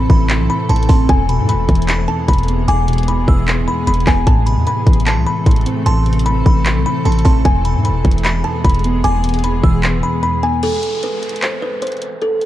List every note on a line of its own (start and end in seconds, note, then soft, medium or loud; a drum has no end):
0.00 0.70 A2 loud
0.00 1.11 C3 medium
0.00 0.10 E3 medium
0.00 4.23 E3 medium
0.00 1.06 A3 medium
0.00 0.30 C4 medium
0.00 1.06 C4 medium
0.00 1.06 A4 medium
0.00 0.27 B5 medium
0.10 0.41 A1 loud
0.10 1.09 E3 medium
0.10 0.66 B5 medium
0.10 kick loud
0.30 0.45 C6 medium
0.30 clap loud
0.30 closed hi-hat medium
0.40 0.49 B1 loud
0.50 0.65 B5 medium
0.69 0.89 A1 loud
0.69 1.09 A2 medium
0.69 0.88 A5 medium
0.69 0.85 C6 medium
0.69 closed hi-hat medium
0.76 closed hi-hat medium
0.83 closed hi-hat medium
0.89 1.09 A1 loud
0.89 1.09 C4 loud
0.89 1.05 A5 loud
0.89 1.08 C6 medium
0.89 kick medium
0.89 open hi-hat medium
1.09 1.41 E1 loud
1.09 2.09 E2 loud
1.09 4.24 G#3 medium
1.09 4.24 B3 medium
1.09 4.24 G#4 medium
1.09 1.47 G#5 loud
1.09 kick loud
1.09 closed hi-hat medium
1.29 2.28 B2 medium
1.29 1.85 B5 medium
1.29 closed hi-hat medium
1.39 1.56 G#2 loud
1.49 1.86 B5 medium
1.49 closed hi-hat loud
1.54 1.68 E1 loud
1.69 2.07 E1 loud
1.69 2.69 E3 medium
1.69 kick loud
1.69 closed hi-hat medium
1.75 closed hi-hat medium
1.82 closed hi-hat medium
1.89 2.64 B5 medium
1.89 2.04 B5 medium
1.89 clap loud
1.89 closed hi-hat medium
2.08 2.24 A5 medium
2.28 2.67 E1 loud
2.28 2.67 E2 medium
2.28 2.66 B5 medium
2.28 kick medium
2.28 closed hi-hat medium
2.33 closed hi-hat medium
2.38 closed hi-hat medium
2.43 closed hi-hat soft
2.48 3.48 B3 medium
2.48 closed hi-hat medium
2.68 3.25 E1 loud
2.68 3.68 E2 medium
2.68 3.06 G#5 medium
2.68 3.24 D6 loud
2.68 closed hi-hat medium
2.88 3.87 B2 medium
2.88 closed hi-hat medium
2.93 closed hi-hat medium
2.98 closed hi-hat medium
3.03 closed hi-hat soft
3.08 3.45 B5 medium
3.08 closed hi-hat medium
3.27 3.59 E1 loud
3.27 4.27 E3 medium
3.27 3.84 E6 medium
3.27 kick loud
3.48 3.64 C6 medium
3.48 clap loud
3.48 closed hi-hat medium
3.58 3.67 D1 loud
3.68 3.83 B5 medium
3.87 4.06 E1 loud
3.87 4.27 E2 medium
3.87 4.03 B5 medium
3.87 closed hi-hat medium
3.94 closed hi-hat medium
4.01 closed hi-hat soft
4.07 4.26 E1 loud
4.07 4.27 B3 medium
4.07 4.23 G#5 medium
4.07 kick medium
4.07 clap loud
4.07 open hi-hat medium
4.27 4.58 A1 loud
4.27 5.26 A2 loud
4.27 10.59 E3 medium
4.27 7.42 A3 medium
4.27 7.42 C4 medium
4.27 7.42 A4 medium
4.27 4.65 A5 loud
4.27 kick loud
4.27 closed hi-hat medium
4.47 5.46 C3 medium
4.47 5.03 B5 medium
4.47 closed hi-hat medium
4.57 4.66 E2 loud
4.67 5.04 B5 medium
4.67 closed hi-hat medium
4.87 5.18 A1 loud
4.87 5.86 E3 medium
4.87 kick loud
4.87 closed hi-hat medium
4.93 closed hi-hat medium
5.00 closed hi-hat medium
5.07 5.82 A5 medium
5.07 5.22 C6 medium
5.07 clap loud
5.07 closed hi-hat medium
5.17 5.26 C2 loud
5.27 5.42 B5 medium
5.46 5.65 A1 loud
5.46 5.85 A2 medium
5.46 5.84 C6 medium
5.46 kick medium
5.46 closed hi-hat medium
5.51 closed hi-hat medium
5.56 closed hi-hat medium
5.61 closed hi-hat soft
5.66 6.66 C4 loud
5.66 closed hi-hat medium
5.86 6.43 A1 loud
5.86 6.85 A2 loud
5.86 6.24 A5 loud
5.86 6.42 C6 loud
5.86 closed hi-hat medium
6.06 7.05 C3 medium
6.06 closed hi-hat soft
6.13 closed hi-hat medium
6.19 closed hi-hat medium
6.26 6.63 B5 medium
6.26 closed hi-hat medium
6.46 6.77 A1 loud
6.46 7.45 E3 medium
6.46 7.02 B5 medium
6.46 kick loud
6.66 6.81 C6 medium
6.66 clap loud
6.66 closed hi-hat medium
6.76 6.85 B1 loud
6.86 7.01 B5 medium
7.05 7.24 A1 loud
7.05 7.45 A2 medium
7.05 7.24 A5 medium
7.05 7.21 C6 medium
7.05 closed hi-hat medium
7.12 closed hi-hat medium
7.19 closed hi-hat medium
7.25 7.44 A1 loud
7.25 7.45 C4 loud
7.25 7.40 A5 medium
7.25 7.44 C6 medium
7.25 kick medium
7.25 open hi-hat medium
7.45 7.76 E1 loud
7.45 8.45 E2 loud
7.45 10.60 G#3 medium
7.45 10.60 B3 medium
7.45 10.60 G#4 medium
7.45 7.83 G#5 loud
7.45 kick loud
7.45 closed hi-hat medium
7.65 8.64 B2 medium
7.65 8.21 B5 medium
7.65 closed hi-hat medium
7.75 7.91 G#2 loud
7.85 8.22 B5 medium
7.85 closed hi-hat medium
7.90 8.04 E1 loud
8.05 8.43 E1 loud
8.05 9.04 E3 medium
8.05 kick loud
8.05 closed hi-hat medium
8.11 closed hi-hat medium
8.18 closed hi-hat medium
8.24 9.00 B5 medium
8.24 8.40 B5 medium
8.24 clap loud
8.24 closed hi-hat medium
8.44 8.60 A5 medium
8.64 9.02 E1 loud
8.64 9.03 E2 medium
8.64 9.02 B5 medium
8.64 kick medium
8.64 closed hi-hat medium
8.69 closed hi-hat medium
8.74 closed hi-hat medium
8.79 closed hi-hat soft
8.84 9.84 B3 medium
8.84 closed hi-hat medium
9.04 9.61 E1 loud
9.04 10.03 E2 loud
9.04 9.41 G#5 loud
9.04 9.60 D6 loud
9.04 closed hi-hat medium
9.23 10.23 B2 medium
9.23 closed hi-hat medium
9.29 closed hi-hat medium
9.34 closed hi-hat medium
9.39 closed hi-hat soft
9.44 9.81 B5 medium
9.44 closed hi-hat medium
9.63 9.95 E1 loud
9.63 10.63 E3 medium
9.63 10.20 E6 medium
9.63 kick loud
9.83 9.99 C6 medium
9.83 clap loud
9.83 closed hi-hat medium
9.93 10.03 D1 loud
10.03 10.19 B5 medium
10.23 10.63 E2 medium
10.23 10.39 B5 loud
10.43 10.63 B3 medium
10.43 10.59 G#5 medium
10.63 11.00 A4 loud
10.63 closed hi-hat medium
10.63 crash loud
10.63 downlifter medium
10.83 closed hi-hat medium
11.03 11.40 B4 medium
11.03 closed hi-hat medium
11.22 closed hi-hat medium
11.29 closed hi-hat medium
11.36 closed hi-hat medium
11.42 11.58 C5 medium
11.42 clap loud
11.42 closed hi-hat medium
11.62 11.78 B4 medium
11.82 12.20 C5 medium
11.82 closed hi-hat medium
11.87 closed hi-hat medium
11.92 closed hi-hat soft
11.97 closed hi-hat soft
12.02 closed hi-hat medium
12.22 12.46 A4 medium
12.22 closed hi-hat medium
12.42 closed hi-hat soft